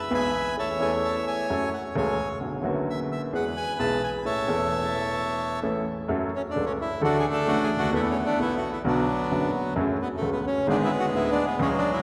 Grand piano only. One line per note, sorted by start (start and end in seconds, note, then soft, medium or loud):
0.10 0.30 B1 medium
0.10 0.30 B2 medium
0.10 0.30 E3 medium
0.10 0.30 G#3 medium
0.10 0.30 B3 medium
0.10 0.31 G#4 medium
0.56 0.77 E2 soft
0.56 0.76 E3 soft
0.56 0.76 A3 soft
0.56 0.77 C#4 soft
0.56 0.77 A4 soft
0.78 1.46 E2 medium
0.78 0.79 E3 medium
0.78 1.46 E3 medium
0.78 1.46 A3 medium
0.78 1.46 C#4 medium
0.82 1.47 A4 medium
1.50 1.69 F#2 medium
1.50 1.69 F#3 medium
1.50 1.69 A3 medium
1.50 1.69 C#4 medium
1.50 1.69 A4 medium
1.95 2.14 C#2 medium
1.95 2.14 C#3 medium
1.95 2.14 F#3 medium
1.95 2.14 A3 medium
1.95 2.15 C#4 medium
1.95 2.15 A4 medium
2.41 2.60 B1 medium
2.41 2.60 B2 medium
2.41 2.60 D3 soft
2.41 2.60 F#3 soft
2.41 2.60 B3 soft
2.41 2.60 F#4 medium
2.62 3.29 F#1 medium
2.62 3.29 F#2 medium
2.62 3.28 D3 medium
2.62 3.29 F#3 medium
2.62 3.29 B3 medium
2.62 3.30 F#4 medium
3.33 3.52 E2 medium
3.33 3.52 E3 medium
3.33 3.52 G#3 medium
3.33 3.52 B3 medium
3.33 3.52 G#4 medium
3.79 3.98 B1 medium
3.79 3.98 B2 medium
3.79 3.98 E3 medium
3.79 3.98 G#3 medium
3.79 3.98 B3 medium
3.79 3.98 G#4 medium
4.25 4.44 A1 soft
4.25 4.44 A2 medium
4.25 4.44 E3 soft
4.25 4.44 A3 soft
4.25 4.44 C#4 soft
4.25 4.44 A4 soft
4.46 5.57 E1 medium
4.46 5.57 E2 medium
4.46 5.57 E3 medium
4.46 5.57 A3 medium
4.46 5.58 C#4 medium
4.46 5.58 A4 medium
5.63 5.83 A1 medium
5.63 5.83 A2 medium
5.63 5.82 E3 medium
5.63 5.82 A3 medium
5.63 5.83 C#4 medium
5.63 5.83 A4 medium
6.08 6.29 F#2 medium
6.08 6.29 F#3 medium
6.08 6.29 A3 medium
6.08 6.29 C#4 medium
6.08 6.29 A4 medium
6.56 6.75 C#2 medium
6.56 6.75 C#3 medium
6.56 6.75 F#3 soft
6.56 6.75 A3 soft
6.56 6.76 C#4 soft
6.56 6.76 A4 medium
7.01 7.21 D2 medium
7.01 7.21 D3 medium
7.01 7.21 F#3 medium
7.01 7.21 A3 medium
7.01 7.21 D4 medium
7.01 7.21 A4 medium
7.47 7.67 A1 medium
7.47 7.67 A2 medium
7.47 7.67 F#3 medium
7.47 7.67 A3 soft
7.47 7.67 D4 soft
7.47 7.67 A4 medium
7.77 7.82 C#2 medium
7.82 7.88 D2 medium
7.87 7.93 D#2 medium
7.92 8.12 E2 medium
7.92 8.13 E3 medium
7.92 8.12 A3 medium
7.92 8.13 B3 medium
7.92 8.13 A4 medium
8.39 8.59 B1 medium
8.39 8.59 B2 medium
8.39 8.59 E3 soft
8.39 8.59 A3 medium
8.39 8.59 B3 medium
8.39 8.59 A4 medium
8.84 9.04 B1 medium
8.84 9.04 B2 medium
8.84 9.04 D3 medium
8.84 9.04 F#3 medium
8.84 9.04 B3 medium
8.84 9.05 F#4 medium
9.30 9.50 F#1 medium
9.30 9.50 F#2 medium
9.30 9.50 D3 medium
9.30 9.50 F#3 soft
9.30 9.50 B3 medium
9.30 9.50 F#4 medium
9.76 9.96 F#2 medium
9.76 9.96 C#3 medium
9.76 9.96 F#3 medium
9.76 9.96 A3 medium
9.76 9.96 F#4 medium
10.21 10.41 C#2 medium
10.21 10.41 C#3 medium
10.21 10.41 F#3 soft
10.21 10.41 A3 soft
10.21 10.41 F#4 medium
10.67 10.87 G#1 medium
10.67 10.87 G#2 medium
10.67 10.87 D3 medium
10.67 10.87 G#3 medium
10.67 10.87 B3 medium
10.67 10.87 G#4 medium
11.13 11.32 D1 medium
11.13 11.32 D2 medium
11.13 11.32 D3 medium
11.13 11.33 G#3 soft
11.13 11.33 B3 soft
11.13 11.32 G#4 medium
11.59 11.79 C#2 medium
11.59 11.78 C#3 medium
11.59 11.78 F#3 medium
11.59 11.79 G#3 medium
11.59 11.79 C#4 medium
11.59 11.79 G#4 medium